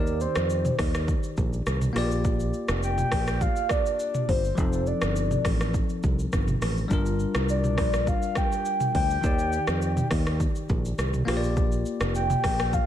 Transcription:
Already playing: fingered electric bass D#2, tine electric piano D#3 D#4 G4 D5, soft synth lead A#4
0.07 shaker
0.21 soft synth lead C5, shaker
0.35 fingered electric bass F2, cross-stick, shaker
0.50 shaker
0.65 mid tom, shaker
0.79 fingered electric bass D#2, kick, cross-stick, open hi-hat
0.94 cross-stick, shaker
1.08 kick, shaker
1.23 shaker
1.37 fingered electric bass A#1, kick, shaker
1.53 shaker
1.66 fingered electric bass C2, cross-stick, shaker
1.82 mid tom, shaker
1.93 fingered electric bass A#1, tine electric piano A#3 F4 G4, cross-stick, open hi-hat
1.98 tine electric piano D5
2.12 shaker
2.25 kick, shaker
2.40 shaker
2.54 shaker
2.68 fingered electric bass F1, cross-stick, shaker
2.83 soft synth lead G5, shaker
2.98 mid tom, shaker
3.12 fingered electric bass A#1, kick, cross-stick, open hi-hat
3.27 cross-stick, shaker
3.41 soft synth lead F5, kick, shaker
3.56 shaker
3.69 soft synth lead D5, kick, cross-stick, shaker
3.86 shaker
4.00 shaker
4.15 mid tom, shaker
4.29 fingered electric bass G1, soft synth lead C5, kick, open hi-hat
4.45 shaker
4.55 fingered electric bass F1, tine electric piano F3 C4 D#4, kick, shaker
4.60 tine electric piano A4
4.73 shaker
4.87 soft synth lead D5, shaker
5.02 fingered electric bass G1, cross-stick, shaker
5.16 shaker
5.31 mid tom, shaker
5.45 fingered electric bass A1, kick, cross-stick, open hi-hat, shaker
5.60 cross-stick, shaker
5.74 kick, shaker
5.89 shaker
6.03 fingered electric bass C2, kick, shaker
6.19 shaker
6.33 fingered electric bass G1, kick, cross-stick, shaker
6.48 mid tom, shaker
6.62 fingered electric bass A1, cross-stick, open hi-hat, shaker
6.78 shaker
6.88 fingered electric bass G1, tine electric piano G3 D4 F4, kick, shaker
6.93 tine electric piano A#4
7.06 shaker
7.20 shaker
7.35 fingered electric bass C2, cross-stick, shaker
7.49 soft synth lead D5, shaker
7.64 mid tom, shaker
7.78 fingered electric bass A#1, kick, cross-stick, open hi-hat
7.93 cross-stick, shaker
8.07 soft synth lead F5, kick, shaker
8.22 shaker
8.35 soft synth lead G5, kick, cross-stick, shaker
8.52 shaker
8.65 shaker
8.80 mid tom, shaker
8.95 fingered electric bass D2, soft synth lead G5, kick, open hi-hat
9.11 shaker
9.21 fingered electric bass D#2, tine electric piano D#3 D#4 G4, kick, shaker
9.26 tine electric piano D5
9.39 shaker
9.53 shaker
9.67 fingered electric bass F2, cross-stick, shaker
9.82 shaker
9.97 mid tom, shaker
10.11 fingered electric bass D#2, kick, cross-stick, open hi-hat
10.26 cross-stick, shaker
10.40 kick, shaker
10.55 shaker
10.69 fingered electric bass A#1, kick, shaker
10.85 shaker
10.98 fingered electric bass C2, cross-stick, shaker
11.14 mid tom, shaker
11.25 fingered electric bass A#1, tine electric piano A#3 F4 G4, cross-stick, open hi-hat
11.30 tine electric piano C5
11.37 tine electric piano D5
11.44 shaker
11.57 kick, shaker
11.72 shaker
11.86 shaker
12.01 fingered electric bass F1, cross-stick, shaker
12.15 soft synth lead G5, shaker
12.30 mid tom, shaker
12.44 fingered electric bass A#1, kick, cross-stick, open hi-hat
12.59 cross-stick, shaker
12.73 soft synth lead F5, kick, shaker

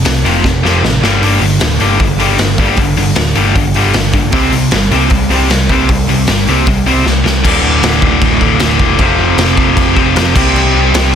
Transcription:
0.05 picked electric bass C2, distorted electric guitar F2 C3, snare, open hi-hat
0.25 picked electric bass F1, distorted electric guitar F2 C3 F3, open hi-hat
0.44 picked electric bass F1, distorted electric guitar F2 C3, kick, snare
0.63 distorted electric guitar F2 C3 F3, snare
0.82 picked electric bass A1, distorted electric guitar F2 C3, snare
1.02 picked electric bass G1, distorted electric guitar G2 D3 G3, snare
1.22 picked electric bass G1, distorted electric guitar G2 D3 G3, open hi-hat
1.41 picked electric bass G1, distorted electric guitar G2 D3, open hi-hat
1.60 picked electric bass D1, distorted electric guitar G2 D3, snare, open hi-hat
1.80 picked electric bass G1, distorted electric guitar G2 D3 G3, open hi-hat
2.00 picked electric bass G1, distorted electric guitar G2 D3, kick, open hi-hat
2.20 distorted electric guitar G2 D3 G3, open hi-hat
2.38 picked electric bass G1, distorted electric guitar G2 D3, snare, open hi-hat
2.58 picked electric bass G1, distorted electric guitar G2 D3 G3, kick, open hi-hat
2.77 picked electric bass G1, distorted electric guitar G2 D3, kick, open hi-hat
2.96 picked electric bass G1, distorted electric guitar G2 D3, open hi-hat
3.15 picked electric bass D1, distorted electric guitar G2 D3, snare, open hi-hat
3.35 picked electric bass G1, distorted electric guitar G2 D3 G3, open hi-hat
3.56 picked electric bass G1, distorted electric guitar G2 D3, kick, open hi-hat
3.74 distorted electric guitar G2 D3 G3, open hi-hat
3.94 picked electric bass G1, distorted electric guitar G2 D3, snare, open hi-hat
4.13 picked electric bass G1, distorted electric guitar G2 D3, kick, open hi-hat
4.32 picked electric bass C2, distorted electric guitar C3 G3 C4, kick, open hi-hat
4.52 picked electric bass C2, distorted electric guitar C3 G3, open hi-hat
4.71 picked electric bass G1, distorted electric guitar C3 G3, snare, open hi-hat
4.91 picked electric bass C2, distorted electric guitar C3 G3 C4, open hi-hat
5.10 picked electric bass C2, distorted electric guitar C3 G3, kick, open hi-hat
5.30 distorted electric guitar C3 G3 C4, open hi-hat
5.49 picked electric bass C2, distorted electric guitar C3 G3, snare, open hi-hat
5.69 picked electric bass C2, distorted electric guitar C3 G3 C4, kick, open hi-hat
5.89 picked electric bass C2, distorted electric guitar C3 G3, kick, open hi-hat
6.08 picked electric bass C2, distorted electric guitar C3 G3, open hi-hat
6.27 picked electric bass G1, distorted electric guitar C3 G3, snare, open hi-hat
6.47 picked electric bass C2, distorted electric guitar C3 G3 C4, open hi-hat
6.67 picked electric bass C2, distorted electric guitar C3 G3, kick, open hi-hat
6.86 distorted electric guitar C3 G3 C4, open hi-hat
7.05 picked electric bass C2, distorted electric guitar C3 G3, snare
7.24 picked electric bass C2, distorted electric guitar C3 G3, snare
7.44 picked electric bass D1, distorted electric guitar D2 A2 D3, kick, crash
7.63 picked electric bass D1
7.83 picked electric bass D1, snare, crash
8.02 picked electric bass D1, kick
8.21 picked electric bass D1, kick, crash
8.40 picked electric bass D1, distorted electric guitar D2 A2 D3, kick
8.59 picked electric bass D1, distorted electric guitar D2 A2 D3, snare, crash
8.79 picked electric bass E1, kick
8.98 picked electric bass F1, distorted electric guitar F2 C3 F3, kick, crash
9.18 picked electric bass F1
9.37 picked electric bass F1, snare, crash
9.57 picked electric bass F1, kick
9.77 picked electric bass F1, kick, crash
9.95 picked electric bass F1, distorted electric guitar F2 C3 F3, kick
10.15 picked electric bass F1, distorted electric guitar F2 C3 F3, snare, crash
10.34 picked electric bass C2, distorted electric guitar C3 G3 C4, kick, crash
10.56 picked electric bass C2, crash
10.74 picked electric bass C2
10.94 picked electric bass C2, snare, crash

